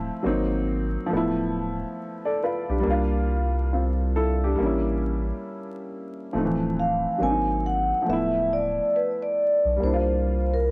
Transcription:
Already playing: upright piano F3 A3 C4 E4
0.23 sub bass G#1, upright piano F#3 A#3 C4
0.28 upright piano D#4
1.06 upright piano F3 A3
1.12 sub bass D1, upright piano B3
1.17 upright piano E4
2.25 upright piano A4 D5
2.44 upright piano F4 B4
2.69 sub bass B1, upright piano D4 G4
2.79 upright piano G3 A#3
2.86 sub bass C2, upright piano D4
2.90 upright piano F4
3.73 upright piano C4 F4
4.16 upright piano E4 A4
4.44 upright piano D4 G4
4.55 upright piano G3 A#3
4.60 sub bass A1, upright piano C#4
4.66 upright piano E4
6.33 sub bass D1, upright piano F3 A3 C4
6.38 upright piano D#4
6.45 upright piano E3
6.79 vibraphone F5
7.18 sub bass G#1, upright piano F#3 A#3 C4
7.23 upright piano D4, vibraphone G#5
7.30 upright piano D#4
7.66 vibraphone F#5
8.02 upright piano F3 A3
8.08 sub bass D1, upright piano B3, vibraphone E5
8.13 upright piano E4
8.53 vibraphone D5
8.96 vibraphone B4
9.23 vibraphone D5
9.65 sub bass B1
9.76 upright piano G3 A#3
9.82 sub bass C2, upright piano D4, vibraphone C5
9.87 upright piano E4
9.94 upright piano F4
10.54 vibraphone A#4

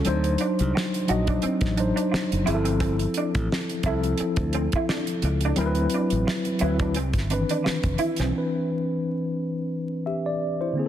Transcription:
0.05 fingered electric bass D2, tine electric piano F#3 D4 D#4, clean electric guitar C4, closed hi-hat
0.09 tine electric piano C5
0.24 closed hi-hat
0.38 clean electric guitar D4, closed hi-hat
0.59 fingered electric bass C2, closed hi-hat
0.75 muted clean electric guitar stroke, snare
0.94 closed hi-hat
1.07 fingered electric bass A#1, tine electric piano F#3 D4 D#4 D#5, clean electric guitar F#4, closed hi-hat
1.27 clean electric guitar D4, kick, closed hi-hat
1.42 clean electric guitar C4, muted fingered electric bass stroke, closed hi-hat
1.61 fingered electric bass A1, kick, snare, closed hi-hat
1.76 tine electric piano F#3 D4 D#4 C5, muted clean electric guitar stroke, closed hi-hat
1.96 clean electric guitar D4, closed hi-hat
2.12 muted clean electric guitar stroke, muted fingered electric bass stroke, snare
2.32 fingered electric bass F#1, closed hi-hat
2.44 fingered electric bass G1, tine electric piano F3 C4 E4 G#4, clean electric guitar E4, closed hi-hat
2.55 tine electric piano A4
2.65 clean electric guitar C4, closed hi-hat
2.80 clean electric guitar C4, kick, closed hi-hat
2.99 closed hi-hat
3.14 clean electric guitar D4, closed hi-hat
3.35 fingered electric bass A1, kick, closed hi-hat
3.52 snare
3.69 closed hi-hat
3.83 fingered electric bass C2, tine electric piano F3 C4 E4 A4, clean electric guitar E4, kick, closed hi-hat
4.04 closed hi-hat
4.18 muted clean electric guitar stroke, muted fingered electric bass stroke, closed hi-hat
4.36 fingered electric bass D2, kick, closed hi-hat
4.53 clean electric guitar C4, closed hi-hat
4.72 clean electric guitar E4, kick, closed hi-hat
4.89 clean electric guitar D4, snare
5.07 closed hi-hat
5.22 fingered electric bass C#2, muted clean electric guitar stroke, closed hi-hat
5.41 closed hi-hat
5.45 clean electric guitar D4
5.56 fingered electric bass D2, tine electric piano F#3 C4 E4 A#4, closed hi-hat
5.61 clean electric guitar C4
5.66 tine electric piano B4
5.75 closed hi-hat
5.90 closed hi-hat
5.94 clean electric guitar D4
6.10 fingered electric bass A1, closed hi-hat
6.27 muted clean electric guitar stroke, snare
6.45 closed hi-hat
6.59 fingered electric bass D2, tine electric piano F#3 C4 E4, clean electric guitar E4, closed hi-hat
6.64 tine electric piano B4
6.79 clean electric guitar D4, kick, closed hi-hat
6.94 fingered electric bass C2, clean electric guitar C4, closed hi-hat
7.13 fingered electric bass G1, kick, snare, closed hi-hat
7.29 tine electric piano D#3 C4 D4 B4, muted clean electric guitar stroke, closed hi-hat
7.36 tine electric piano E3
7.49 clean electric guitar D4, closed hi-hat
7.64 muted clean electric guitar stroke, muted fingered electric bass stroke, snare
7.83 fingered electric bass F1, kick, closed hi-hat
7.98 clean electric guitar E4, closed hi-hat
8.16 fingered electric bass B1, clean electric guitar C4, snare, closed hi-hat
8.31 tine electric piano E3 C4
8.35 tine electric piano D4 B4
10.06 tine electric piano G4 E5
10.26 tine electric piano D5
10.61 tine electric piano E4 C5
10.73 tine electric piano D3 A#3
10.78 tine electric piano C4 G#4

